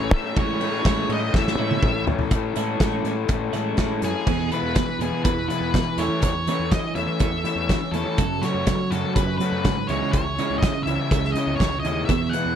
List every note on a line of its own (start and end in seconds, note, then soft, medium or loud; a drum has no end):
0.00 0.11 A1 medium
0.00 0.36 A2 medium
0.00 0.36 E3 medium
0.00 0.15 A3 medium
0.00 0.13 C#4 medium
0.00 0.12 E4 medium
0.00 2.27 E4 medium
0.00 2.28 C#5 medium
0.00 2.28 G#5 medium
0.00 2.28 A5 medium
0.11 0.35 A2 loud
0.11 0.36 A3 medium
0.11 0.37 C#4 medium
0.11 0.38 E4 medium
0.11 0.38 E5 loud
0.36 0.60 A1 loud
0.36 0.84 A2 medium
0.36 0.68 E3 medium
0.36 0.85 E3 loud
0.36 0.68 G#3 loud
0.36 0.63 A3 loud
0.36 0.68 C#4 medium
0.36 0.61 C#4 loud
0.36 0.69 E4 medium
0.36 0.60 E4 loud
0.36 0.85 C#5 loud
0.36 kick loud
0.36 ride loud
0.60 0.84 A2 medium
0.60 0.85 A3 medium
0.60 0.86 C#4 medium
0.60 0.87 E4 medium
0.60 ride medium
0.85 1.08 A1 loud
0.85 1.34 A2 medium
0.85 1.17 E3 medium
0.85 1.33 E3 loud
0.85 1.17 G#3 medium
0.85 1.11 A3 loud
0.85 1.17 C#4 loud
0.85 1.10 C#4 loud
0.85 1.18 E4 loud
0.85 1.09 E4 loud
0.85 1.09 C#5 loud
0.85 kick loud
0.85 snare loud
0.85 ride medium
1.09 1.32 A2 medium
1.09 1.34 A3 medium
1.09 1.35 C#4 medium
1.09 1.36 E4 medium
1.09 1.36 D#5 loud
1.09 ride medium
1.34 1.57 A1 medium
1.34 1.60 E3 medium
1.34 1.60 A3 medium
1.34 1.59 C#4 medium
1.34 1.59 E4 medium
1.34 2.04 E5 medium
1.34 kick loud
1.34 snare medium
1.48 snare medium
1.58 1.81 A2 medium
1.58 1.91 E3 medium
1.58 1.82 E3 medium
1.58 1.90 G#3 medium
1.58 1.83 A3 medium
1.58 1.91 C#4 medium
1.58 1.84 C#4 medium
1.58 1.90 E4 loud
1.58 1.85 E4 medium
1.63 2.09 A2 medium
1.71 high tom medium
1.82 2.07 A1 medium
1.82 2.30 E3 medium
1.82 2.09 A3 medium
1.82 2.08 C#4 medium
1.82 kick loud
1.82 mid tom medium
1.86 2.06 E4 medium
2.07 2.30 A2 loud
2.07 2.32 A3 medium
2.07 2.31 C#4 medium
2.07 2.30 E4 medium
2.07 floor tom loud
2.19 floor tom medium
2.31 2.54 A2 loud
2.31 2.80 A2 medium
2.31 2.81 E3 medium
2.31 2.59 A3 medium
2.31 2.58 C#4 medium
2.31 2.57 E4 loud
2.31 kick loud
2.31 closed hi-hat medium
2.35 2.56 A4 medium
2.56 2.79 A2 medium
2.56 2.79 E3 medium
2.56 2.80 G#3 medium
2.56 2.80 C#4 medium
2.56 2.80 E4 loud
2.56 2.81 E4 medium
2.56 2.83 A4 medium
2.56 closed hi-hat medium
2.60 2.79 A3 medium
2.80 3.03 A2 medium
2.80 3.12 E3 medium
2.80 3.12 G#3 medium
2.80 3.07 A3 medium
2.80 3.12 C#4 medium
2.80 3.06 C#4 medium
2.80 3.13 E4 medium
2.80 3.06 E4 medium
2.80 kick loud
2.80 snare loud
2.80 closed hi-hat medium
2.84 3.05 A4 medium
3.04 3.28 A2 medium
3.04 3.55 E3 medium
3.04 3.29 A3 medium
3.04 3.30 C#4 medium
3.04 3.31 E4 medium
3.04 3.32 A4 medium
3.04 closed hi-hat medium
3.09 3.56 A2 medium
3.28 3.52 A2 loud
3.28 3.56 A3 medium
3.28 3.56 C#4 medium
3.28 3.54 E4 medium
3.28 kick loud
3.28 closed hi-hat medium
3.33 3.53 A4 medium
3.53 3.76 A2 medium
3.53 3.76 E3 medium
3.53 3.77 G#3 medium
3.53 3.77 C#4 medium
3.53 3.80 C#4 medium
3.53 3.77 E4 medium
3.53 3.80 E4 medium
3.53 3.81 A4 medium
3.53 closed hi-hat medium
3.57 3.79 A3 medium
3.77 4.01 A2 medium
3.77 4.26 A2 medium
3.77 4.09 E3 medium
3.77 4.27 E3 medium
3.77 4.10 G#3 medium
3.77 4.05 A3 medium
3.77 4.10 C#4 medium
3.77 4.04 C#4 medium
3.77 4.10 E4 medium
3.77 kick medium
3.77 snare medium
3.77 closed hi-hat medium
3.81 4.03 E4 medium
3.81 4.02 A4 loud
4.02 4.14 F#2 medium
4.02 4.27 C#4 medium
4.02 4.26 E4 medium
4.02 4.52 G#4 medium
4.02 4.26 A4 medium
4.02 snare soft
4.02 closed hi-hat medium
4.06 4.27 A3 soft
4.26 4.50 E2 medium
4.26 4.49 E2 loud
4.26 4.50 B2 medium
4.26 4.50 E3 loud
4.26 5.96 E3 medium
4.26 8.16 E4 medium
4.26 5.97 G#4 medium
4.26 5.98 B4 medium
4.26 kick loud
4.26 crash medium
4.50 4.73 E2 medium
4.50 4.74 B2 medium
4.50 4.62 E3 medium
4.50 4.85 B3 medium
4.50 4.84 E4 medium
4.50 4.75 B4 medium
4.50 closed hi-hat medium
4.54 4.85 E3 medium
4.54 4.85 G#3 medium
4.62 4.74 E2 medium
4.75 4.99 E2 medium
4.75 4.99 B2 medium
4.75 4.98 E3 medium
4.75 5.01 B4 medium
4.75 kick loud
4.75 snare loud
4.75 closed hi-hat medium
4.99 5.10 E2 medium
4.99 5.23 E2 medium
4.99 5.23 B2 medium
4.99 5.33 B3 medium
4.99 5.33 E4 medium
4.99 5.24 G#4 medium
4.99 closed hi-hat medium
5.03 5.34 E3 medium
5.03 5.33 G#3 medium
5.11 5.23 E3 medium
5.24 5.48 E2 medium
5.24 5.48 B2 medium
5.24 5.49 E3 loud
5.24 5.48 B4 medium
5.24 kick loud
5.24 closed hi-hat medium
5.48 5.72 E2 medium
5.48 5.72 B2 medium
5.48 5.60 E3 medium
5.48 5.82 E3 medium
5.48 5.82 G#3 medium
5.48 5.82 B3 medium
5.48 5.82 E4 medium
5.48 6.00 B4 medium
5.48 closed hi-hat medium
5.60 5.72 E2 medium
5.74 5.96 E2 medium
5.74 5.97 B2 medium
5.74 5.97 E3 medium
5.74 kick medium
5.74 snare medium
5.74 closed hi-hat medium
5.97 6.08 E2 loud
5.97 8.16 E3 medium
5.97 6.22 E3 medium
5.97 6.31 E3 medium
5.97 6.22 A3 medium
5.97 6.31 A3 medium
5.97 6.30 C#4 medium
5.97 6.22 C#4 medium
5.97 6.30 E4 medium
5.97 9.85 A4 medium
5.97 9.85 C#5 medium
5.97 6.20 C#5 medium
5.97 closed hi-hat medium
6.08 6.21 E3 medium
6.22 6.46 E2 medium
6.22 6.45 A3 medium
6.22 6.72 C#5 medium
6.22 kick medium
6.22 closed hi-hat medium
6.47 6.59 E3 loud
6.47 6.71 E3 medium
6.47 6.80 E3 medium
6.47 6.71 A3 medium
6.47 6.80 A3 medium
6.47 6.71 C#4 loud
6.47 6.80 C#4 medium
6.47 6.80 E4 medium
6.47 closed hi-hat medium
6.59 6.71 E2 medium
6.71 6.95 E3 medium
6.71 6.94 E3 medium
6.71 6.95 A3 medium
6.71 6.95 D#5 medium
6.71 kick medium
6.71 snare loud
6.71 closed hi-hat medium
6.95 7.06 E2 medium
6.95 7.18 E3 medium
6.95 7.29 E3 medium
6.95 7.28 A3 medium
6.95 7.19 A3 medium
6.95 7.28 C#4 medium
6.95 7.28 E4 medium
6.95 7.97 E5 loud
6.95 closed hi-hat medium
7.07 7.19 E3 medium
7.20 7.43 E2 loud
7.20 7.44 E3 medium
7.20 7.44 A3 loud
7.20 7.44 C#4 medium
7.20 kick loud
7.20 closed hi-hat medium
7.44 7.55 E3 medium
7.44 7.67 E3 medium
7.44 7.78 E3 medium
7.44 7.67 A3 medium
7.44 7.77 A3 medium
7.44 7.77 C#4 medium
7.44 7.77 E4 medium
7.44 closed hi-hat medium
7.55 7.68 E2 medium
7.69 7.91 E3 medium
7.69 7.92 A3 medium
7.69 kick medium
7.69 snare medium
7.69 closed hi-hat medium
7.91 8.04 E2 loud
7.91 8.16 E3 medium
7.91 8.16 A3 medium
7.91 8.19 A3 medium
7.91 8.19 C#4 medium
7.91 8.19 E4 medium
7.91 8.43 A4 medium
7.91 closed hi-hat medium
7.96 8.19 E3 medium
8.04 8.17 E3 medium
8.18 8.41 F#2 medium
8.18 8.42 F#2 medium
8.18 8.42 C#3 medium
8.18 9.88 F#3 medium
8.18 8.42 F#3 loud
8.18 9.88 F#4 medium
8.18 kick loud
8.18 closed hi-hat medium
8.41 8.65 F#2 medium
8.41 8.65 C#3 medium
8.41 8.54 F#3 medium
8.41 8.76 F#3 medium
8.41 8.76 A3 medium
8.41 8.76 C#4 medium
8.41 8.75 F#4 medium
8.41 8.66 C#5 medium
8.41 closed hi-hat medium
8.54 8.66 F#2 medium
8.66 8.89 F#2 medium
8.66 8.89 C#3 medium
8.66 8.90 F#3 medium
8.66 8.92 C#5 medium
8.66 kick loud
8.66 snare loud
8.66 closed hi-hat medium
8.91 9.03 F#2 medium
8.91 9.14 F#2 medium
8.91 9.14 C#3 medium
8.91 9.25 F#3 medium
8.91 9.24 A3 medium
8.91 9.24 C#4 medium
8.91 9.24 F#4 medium
8.91 9.14 A4 medium
8.91 closed hi-hat medium
9.04 9.15 F#3 medium
9.15 9.39 F#2 medium
9.15 9.39 C#3 loud
9.15 9.39 F#3 medium
9.15 9.36 B4 medium
9.15 kick loud
9.15 closed hi-hat medium
9.38 9.62 F#2 medium
9.38 9.63 C#3 medium
9.38 9.51 F#3 medium
9.38 9.73 C#4 medium
9.38 9.73 F#4 medium
9.38 9.90 B4 loud
9.38 closed hi-hat medium
9.42 9.73 F#3 medium
9.42 9.73 A3 medium
9.52 9.64 F#2 medium
9.64 9.87 F#2 medium
9.64 9.88 G#2 medium
9.64 9.88 C#3 medium
9.64 kick medium
9.64 snare medium
9.64 closed hi-hat medium
9.87 10.01 C#2 medium
9.87 12.06 C#3 medium
9.87 10.13 C#3 medium
9.87 10.13 E3 medium
9.87 10.22 G#3 medium
9.87 12.06 C#4 medium
9.87 10.22 C#4 medium
9.87 10.21 E4 medium
9.87 12.55 G#4 medium
9.87 10.11 C#5 medium
9.87 12.06 E5 medium
9.87 closed hi-hat medium
9.91 10.22 C#3 medium
9.91 10.13 G#3 medium
10.01 10.13 C#3 loud
10.13 10.37 C#2 medium
10.13 10.36 C#3 medium
10.13 10.37 E3 medium
10.13 10.58 C#5 medium
10.13 kick loud
10.13 closed hi-hat medium
10.38 10.49 C#3 medium
10.38 10.62 C#3 medium
10.38 10.71 C#3 medium
10.38 10.62 E3 medium
10.38 10.62 G#3 medium
10.38 10.71 G#3 medium
10.38 10.71 C#4 medium
10.38 10.71 E4 medium
10.38 closed hi-hat medium
10.50 10.62 C#2 medium
10.58 10.83 D#5 loud
10.63 10.85 C#3 medium
10.63 10.85 E3 medium
10.63 kick loud
10.63 snare loud
10.63 closed hi-hat medium
10.83 10.97 C#2 medium
10.83 11.09 C#3 medium
10.83 11.19 E4 medium
10.83 11.31 E5 loud
10.83 closed hi-hat medium
10.88 11.20 C#3 medium
10.88 11.09 E3 medium
10.88 11.19 G#3 medium
10.88 11.19 C#4 medium
10.98 11.10 C#3 medium
11.11 11.34 C#2 medium
11.11 11.34 C#3 medium
11.11 11.35 E3 medium
11.11 11.35 G#3 medium
11.11 kick loud
11.11 closed hi-hat medium
11.25 snare soft
11.32 11.46 C#3 medium
11.32 11.58 C#3 medium
11.32 11.55 D#5 medium
11.32 closed hi-hat medium
11.37 11.69 C#3 medium
11.37 11.58 E3 medium
11.37 11.68 G#3 medium
11.37 11.68 C#4 medium
11.37 11.68 E4 medium
11.46 11.59 C#2 medium
11.56 11.82 C#2 medium
11.56 11.79 C#5 loud
11.60 11.83 C#3 medium
11.60 11.83 E3 medium
11.60 kick medium
11.60 snare medium
11.60 closed hi-hat medium
11.80 12.05 D#5 medium
11.85 12.07 D#2 medium
11.85 12.07 C#3 medium
11.85 12.10 C#3 medium
11.85 12.07 E3 medium
11.85 12.10 G#3 medium
11.85 12.09 C#4 medium
11.85 12.09 E4 medium
11.85 closed hi-hat medium
12.05 12.32 E2 loud
12.05 12.55 E3 medium
12.05 12.55 B3 medium
12.05 12.33 E5 loud
12.05 12.55 E5 medium
12.05 kick loud
12.05 closed hi-hat medium
12.10 12.33 E2 medium
12.10 12.33 B2 medium
12.10 12.33 E3 medium
12.29 12.44 E3 medium
12.29 12.55 F#5 loud
12.29 closed hi-hat medium
12.34 12.55 E2 medium
12.34 12.55 B2 medium
12.34 12.55 E3 medium
12.34 12.55 G#3 medium
12.34 12.55 B3 medium
12.34 12.55 E4 medium
12.45 12.55 E2 medium